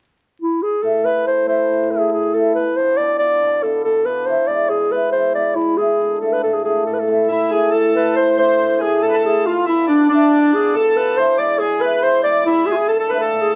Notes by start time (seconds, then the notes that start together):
0.42 E4
0.63 G#4
0.83 A2 A4
1.03 A3 C4 E4 B4
1.25 A2 C5
1.46 A3 C4 E4 C5
1.69 A2
1.90 A3 C4 E4 G#4
2.12 A2 G#4
2.34 A3 C4 E4 A4
2.55 B2 B4
2.77 B3 D4 F4 C5
2.97 B2 D5
3.19 B3 D4 F4 D5
3.43 B2
3.63 B3 D4 F4 A4
3.84 B2 A4
4.05 B3 D4 F4 B4
4.26 E3 C5
4.47 G#3 B3 E4 D5
4.69 B2 G#4
4.92 G#3 B3 E4 B4
5.12 E3 C5
5.35 G#3 B3 E4 D5
5.56 B2 E4
5.77 G#3 B3 E4 G#4
5.99 D3
6.21 A3 D4 F4 A4
6.33 B4
6.43 A2 A4
6.54 G#4
6.64 A3 D4 F4 G#4
6.86 A2 A4
6.94 B4
7.00 A4
7.07 A3 C4 E4
7.28 A2 E4
7.49 A3 C4 D4 G#4
7.70 A2 A4
7.94 A3 C4 E4 B4
8.15 A2 C5
8.37 A3 C4 D4 C5
8.59 A2
8.79 A3 C4 D4 G#4
9.02 A2 A4
9.08 B4
9.14 A4
9.24 A3 C4 E4 G#4
9.45 B2 F4
9.65 B3 D4 E4 F4
9.87 B2 D4
10.09 B3 D4 E4
10.32 B2
10.53 B3 D4 F4 G#4
10.73 B2 A4
10.96 B3 D4 F4 B4
11.17 E3 C5
11.38 G#3 B3 E4 D5
11.59 B2 G#4
11.80 G#3 B3 E4 B4
12.02 E3 C5
12.23 G#3 B3 E4 D5
12.46 B2 E4
12.66 G#3 B3 E4 G#4
12.72 F4
12.77 G#4
12.88 D3 A4
12.99 A4
13.09 A3 D4 F4 B4
13.20 A4
13.33 A2
13.42 G#4